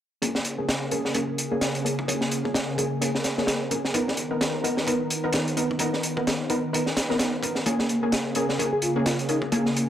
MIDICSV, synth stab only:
0, 0, Header, 1, 2, 480
1, 0, Start_track
1, 0, Tempo, 465116
1, 226, Time_signature, 4, 2, 24, 8
1, 10206, End_track
2, 0, Start_track
2, 0, Title_t, "Synth stab"
2, 0, Program_c, 0, 62
2, 223, Note_on_c, 0, 58, 81
2, 224, Note_on_c, 0, 61, 79
2, 224, Note_on_c, 0, 68, 90
2, 570, Note_off_c, 0, 58, 0
2, 570, Note_off_c, 0, 61, 0
2, 570, Note_off_c, 0, 68, 0
2, 602, Note_on_c, 0, 61, 63
2, 602, Note_on_c, 0, 68, 75
2, 603, Note_on_c, 0, 58, 69
2, 680, Note_off_c, 0, 58, 0
2, 680, Note_off_c, 0, 61, 0
2, 680, Note_off_c, 0, 68, 0
2, 944, Note_on_c, 0, 61, 77
2, 944, Note_on_c, 0, 68, 93
2, 945, Note_on_c, 0, 58, 84
2, 1050, Note_off_c, 0, 58, 0
2, 1050, Note_off_c, 0, 61, 0
2, 1050, Note_off_c, 0, 68, 0
2, 1183, Note_on_c, 0, 58, 83
2, 1183, Note_on_c, 0, 61, 75
2, 1183, Note_on_c, 0, 68, 92
2, 1289, Note_off_c, 0, 58, 0
2, 1289, Note_off_c, 0, 61, 0
2, 1289, Note_off_c, 0, 68, 0
2, 1563, Note_on_c, 0, 58, 84
2, 1563, Note_on_c, 0, 61, 76
2, 1563, Note_on_c, 0, 68, 90
2, 1881, Note_off_c, 0, 58, 0
2, 1881, Note_off_c, 0, 61, 0
2, 1881, Note_off_c, 0, 68, 0
2, 1905, Note_on_c, 0, 68, 82
2, 1906, Note_on_c, 0, 58, 75
2, 1906, Note_on_c, 0, 61, 68
2, 2065, Note_off_c, 0, 68, 0
2, 2066, Note_off_c, 0, 58, 0
2, 2066, Note_off_c, 0, 61, 0
2, 2145, Note_on_c, 0, 58, 83
2, 2145, Note_on_c, 0, 61, 78
2, 2145, Note_on_c, 0, 68, 92
2, 2491, Note_off_c, 0, 58, 0
2, 2491, Note_off_c, 0, 61, 0
2, 2491, Note_off_c, 0, 68, 0
2, 2526, Note_on_c, 0, 58, 69
2, 2526, Note_on_c, 0, 61, 64
2, 2526, Note_on_c, 0, 68, 77
2, 2601, Note_off_c, 0, 58, 0
2, 2602, Note_off_c, 0, 61, 0
2, 2602, Note_off_c, 0, 68, 0
2, 2866, Note_on_c, 0, 68, 94
2, 2867, Note_on_c, 0, 58, 83
2, 2867, Note_on_c, 0, 61, 77
2, 2971, Note_off_c, 0, 58, 0
2, 2971, Note_off_c, 0, 61, 0
2, 2971, Note_off_c, 0, 68, 0
2, 3107, Note_on_c, 0, 61, 77
2, 3108, Note_on_c, 0, 58, 84
2, 3108, Note_on_c, 0, 68, 92
2, 3211, Note_off_c, 0, 61, 0
2, 3211, Note_off_c, 0, 68, 0
2, 3212, Note_off_c, 0, 58, 0
2, 3487, Note_on_c, 0, 58, 82
2, 3487, Note_on_c, 0, 61, 76
2, 3487, Note_on_c, 0, 68, 90
2, 3803, Note_off_c, 0, 58, 0
2, 3803, Note_off_c, 0, 61, 0
2, 3803, Note_off_c, 0, 68, 0
2, 3827, Note_on_c, 0, 58, 74
2, 3827, Note_on_c, 0, 68, 82
2, 3828, Note_on_c, 0, 61, 68
2, 3986, Note_off_c, 0, 58, 0
2, 3986, Note_off_c, 0, 68, 0
2, 3987, Note_off_c, 0, 61, 0
2, 4065, Note_on_c, 0, 59, 87
2, 4065, Note_on_c, 0, 63, 77
2, 4065, Note_on_c, 0, 70, 95
2, 4411, Note_off_c, 0, 59, 0
2, 4411, Note_off_c, 0, 63, 0
2, 4411, Note_off_c, 0, 70, 0
2, 4444, Note_on_c, 0, 59, 72
2, 4445, Note_on_c, 0, 63, 63
2, 4445, Note_on_c, 0, 70, 75
2, 4521, Note_off_c, 0, 59, 0
2, 4521, Note_off_c, 0, 63, 0
2, 4521, Note_off_c, 0, 70, 0
2, 4784, Note_on_c, 0, 59, 84
2, 4785, Note_on_c, 0, 63, 77
2, 4785, Note_on_c, 0, 70, 96
2, 4890, Note_off_c, 0, 59, 0
2, 4890, Note_off_c, 0, 63, 0
2, 4890, Note_off_c, 0, 70, 0
2, 5025, Note_on_c, 0, 59, 83
2, 5025, Note_on_c, 0, 63, 76
2, 5025, Note_on_c, 0, 70, 90
2, 5130, Note_off_c, 0, 59, 0
2, 5130, Note_off_c, 0, 63, 0
2, 5130, Note_off_c, 0, 70, 0
2, 5404, Note_on_c, 0, 59, 82
2, 5404, Note_on_c, 0, 70, 92
2, 5405, Note_on_c, 0, 63, 77
2, 5721, Note_off_c, 0, 59, 0
2, 5721, Note_off_c, 0, 70, 0
2, 5722, Note_off_c, 0, 63, 0
2, 5745, Note_on_c, 0, 63, 69
2, 5745, Note_on_c, 0, 70, 82
2, 5746, Note_on_c, 0, 59, 76
2, 5905, Note_off_c, 0, 63, 0
2, 5905, Note_off_c, 0, 70, 0
2, 5906, Note_off_c, 0, 59, 0
2, 5984, Note_on_c, 0, 63, 77
2, 5984, Note_on_c, 0, 70, 96
2, 5985, Note_on_c, 0, 59, 86
2, 6330, Note_off_c, 0, 63, 0
2, 6331, Note_off_c, 0, 59, 0
2, 6331, Note_off_c, 0, 70, 0
2, 6363, Note_on_c, 0, 59, 69
2, 6363, Note_on_c, 0, 63, 64
2, 6363, Note_on_c, 0, 70, 76
2, 6440, Note_off_c, 0, 59, 0
2, 6440, Note_off_c, 0, 63, 0
2, 6440, Note_off_c, 0, 70, 0
2, 6706, Note_on_c, 0, 63, 76
2, 6706, Note_on_c, 0, 70, 92
2, 6707, Note_on_c, 0, 59, 84
2, 6810, Note_off_c, 0, 63, 0
2, 6811, Note_off_c, 0, 59, 0
2, 6811, Note_off_c, 0, 70, 0
2, 6946, Note_on_c, 0, 59, 83
2, 6946, Note_on_c, 0, 70, 91
2, 6947, Note_on_c, 0, 63, 77
2, 7051, Note_off_c, 0, 59, 0
2, 7051, Note_off_c, 0, 63, 0
2, 7051, Note_off_c, 0, 70, 0
2, 7325, Note_on_c, 0, 59, 82
2, 7325, Note_on_c, 0, 63, 76
2, 7326, Note_on_c, 0, 70, 92
2, 7642, Note_off_c, 0, 59, 0
2, 7642, Note_off_c, 0, 63, 0
2, 7642, Note_off_c, 0, 70, 0
2, 7665, Note_on_c, 0, 59, 74
2, 7665, Note_on_c, 0, 63, 67
2, 7665, Note_on_c, 0, 70, 81
2, 7825, Note_off_c, 0, 59, 0
2, 7825, Note_off_c, 0, 63, 0
2, 7825, Note_off_c, 0, 70, 0
2, 7906, Note_on_c, 0, 58, 85
2, 7906, Note_on_c, 0, 61, 77
2, 7906, Note_on_c, 0, 68, 94
2, 8251, Note_off_c, 0, 58, 0
2, 8251, Note_off_c, 0, 61, 0
2, 8251, Note_off_c, 0, 68, 0
2, 8283, Note_on_c, 0, 61, 65
2, 8284, Note_on_c, 0, 58, 70
2, 8284, Note_on_c, 0, 68, 77
2, 8360, Note_off_c, 0, 58, 0
2, 8360, Note_off_c, 0, 61, 0
2, 8361, Note_off_c, 0, 68, 0
2, 8625, Note_on_c, 0, 58, 85
2, 8625, Note_on_c, 0, 61, 76
2, 8625, Note_on_c, 0, 68, 95
2, 8730, Note_off_c, 0, 58, 0
2, 8730, Note_off_c, 0, 61, 0
2, 8730, Note_off_c, 0, 68, 0
2, 8866, Note_on_c, 0, 58, 82
2, 8866, Note_on_c, 0, 61, 76
2, 8866, Note_on_c, 0, 68, 91
2, 8971, Note_off_c, 0, 58, 0
2, 8971, Note_off_c, 0, 61, 0
2, 8971, Note_off_c, 0, 68, 0
2, 9244, Note_on_c, 0, 61, 78
2, 9245, Note_on_c, 0, 58, 84
2, 9245, Note_on_c, 0, 68, 92
2, 9561, Note_off_c, 0, 61, 0
2, 9562, Note_off_c, 0, 58, 0
2, 9562, Note_off_c, 0, 68, 0
2, 9587, Note_on_c, 0, 58, 76
2, 9587, Note_on_c, 0, 61, 69
2, 9588, Note_on_c, 0, 68, 82
2, 9746, Note_off_c, 0, 58, 0
2, 9746, Note_off_c, 0, 61, 0
2, 9747, Note_off_c, 0, 68, 0
2, 9826, Note_on_c, 0, 61, 79
2, 9827, Note_on_c, 0, 58, 85
2, 9827, Note_on_c, 0, 68, 91
2, 10172, Note_off_c, 0, 58, 0
2, 10172, Note_off_c, 0, 61, 0
2, 10172, Note_off_c, 0, 68, 0
2, 10206, End_track
0, 0, End_of_file